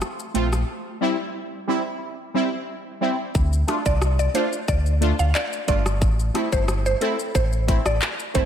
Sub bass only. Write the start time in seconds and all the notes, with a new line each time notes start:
0.35 A#1
3.35 D2
3.86 C2
4.68 D2
5.19 D2
5.68 G1
6.02 A1
6.52 G1
7.35 A1
7.86 A1
8.35 G1